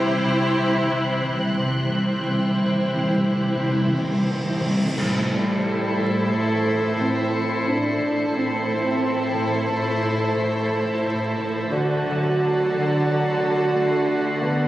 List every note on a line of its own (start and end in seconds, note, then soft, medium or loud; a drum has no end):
0.00 1.56 C2 medium
0.00 0.23 C3 medium
0.00 1.56 C3 medium
0.00 0.08 C3 soft
0.00 1.56 C4 medium
0.00 1.92 C4 medium
0.00 1.56 E4 medium
0.00 1.56 G4 medium
0.00 1.56 C5 medium
0.00 1.56 E5 medium
0.00 1.59 G5 medium
0.00 4.59 C6 medium
0.00 3.92 F#6 medium
0.09 0.16 C3 soft
0.17 0.23 C3 soft
0.24 0.56 C3 soft
0.24 0.31 C3 soft
0.32 0.38 C3 soft
0.40 0.45 C3 soft
0.47 0.53 C3 soft
0.54 0.61 C3 soft
0.54 0.90 C3 soft
0.62 0.68 C3 medium
0.70 0.76 C3 medium
0.77 0.83 C3 medium
0.84 0.90 C3 medium
0.91 1.24 C3 soft
0.91 0.98 C3 soft
1.00 1.06 C3 soft
1.07 1.13 C3 soft
1.14 1.21 C3 medium
1.22 1.28 C3 medium
1.22 1.58 C3 soft
1.30 1.35 C3 medium
1.36 1.43 C3 medium
1.44 1.51 C3 medium
1.52 1.57 C3 medium
1.58 4.73 C2 medium
1.58 1.66 C3 medium
1.58 2.26 C3 medium
1.58 4.73 C3 medium
1.58 4.60 C4 medium
1.58 4.60 E4 medium
1.58 4.73 E4 medium
1.58 4.72 G4 medium
1.58 4.72 C5 medium
1.58 4.93 C5 medium
1.58 4.93 E5 medium
1.58 4.93 G5 medium
1.58 cymbal swell soft
1.67 1.73 C3 medium
1.75 1.81 C3 medium
1.83 1.88 C3 medium
1.89 1.96 C3 medium
1.94 2.04 C3 medium
1.94 5.84 C4 soft
2.05 2.11 C3 medium
2.12 2.19 C3 medium
2.20 2.27 C3 medium
2.27 2.60 C3 soft
2.27 2.34 C3 medium
2.35 2.42 C3 medium
2.43 2.50 C3 medium
2.51 2.57 C3 medium
2.58 2.64 C3 medium
2.58 2.94 C3 soft
2.65 2.71 C3 medium
2.73 2.79 C3 medium
2.80 2.87 C3 medium
2.88 2.94 C3 medium
2.95 3.01 C3 medium
2.95 3.28 C3 soft
3.03 3.08 C3 medium
3.09 3.16 C3 medium
3.17 3.24 C3 medium
3.25 3.32 C3 medium
3.29 3.62 C3 medium
3.29 3.39 C3 medium
3.41 3.46 C3 medium
3.47 3.55 C3 medium
3.56 3.62 C3 medium
3.63 3.70 C3 medium
3.63 3.95 C3 soft
3.71 3.77 C3 medium
3.79 3.85 C3 medium
3.86 3.92 C3 medium
3.93 3.99 C3 medium
3.93 4.29 C3 soft
4.01 4.07 C3 medium
4.08 4.14 C3 medium
4.16 4.22 C3 medium
4.23 4.30 C3 medium
4.30 4.63 C3 soft
4.30 4.37 C3 medium
4.38 4.44 C3 medium
4.46 4.52 C3 medium
4.53 4.60 C3 loud
4.61 4.67 C3 loud
4.61 5.00 C3 soft
4.68 4.74 C3 loud
4.76 4.82 C3 medium
4.83 4.90 C3 loud
4.96 8.31 A1 medium
4.96 5.31 A2 medium
4.96 5.94 A2 loud
4.96 8.31 A2 medium
4.96 8.30 E4 medium
4.96 8.30 A4 medium
4.96 8.30 C5 medium
4.96 8.31 C5 medium
4.96 8.31 E5 medium
4.96 8.31 A5 medium
4.96 11.33 C7 medium
4.96 10.66 C#7 medium
4.96 concert bass drum medium
4.96 crash medium
4.96 impact medium
5.31 5.97 A2 medium
5.31 6.28 G3 medium
5.65 7.32 A3 medium
5.99 6.31 A2 medium
6.31 6.65 A2 medium
6.31 6.99 A3 medium
6.67 6.98 A2 medium
6.99 7.66 A2 medium
6.99 7.66 C4 medium
7.33 9.01 A3 medium
7.67 7.99 A2 medium
7.67 8.35 D4 medium
8.00 8.32 A2 soft
8.33 11.67 A1 medium
8.33 8.67 A2 medium
8.33 11.67 A2 medium
8.33 9.67 C4 loud
8.33 11.67 E4 medium
8.33 11.67 A4 medium
8.33 11.68 C5 medium
8.33 11.68 E5 medium
8.33 11.68 A5 medium
8.68 9.34 A2 medium
9.02 10.69 A3 soft
9.35 9.68 A2 medium
9.69 10.00 A2 medium
9.69 11.34 A3 medium
10.02 10.34 A2 medium
10.35 11.02 A2 medium
10.70 14.60 A3 soft
11.04 11.36 A2 medium
11.37 11.74 A2 soft
11.70 14.68 D2 medium
11.70 12.04 D3 medium
11.70 14.68 D3 medium
11.70 14.68 F#4 medium
11.70 14.68 A4 medium
11.70 14.68 D5 medium
11.70 14.68 F#5 medium
11.70 14.68 A5 medium
11.70 14.68 F#6 soft
12.05 12.71 D3 medium
12.05 13.02 F#3 medium
12.38 14.06 D4 soft
12.38 14.68 C7 soft
12.72 13.05 D3 medium
13.05 13.38 D3 medium
13.05 13.71 F#3 medium
13.39 13.72 D3 medium
13.73 14.40 D3 soft
13.73 14.42 A3 medium
14.07 14.68 D4 medium
14.41 14.68 D3 medium
14.41 14.68 B3 medium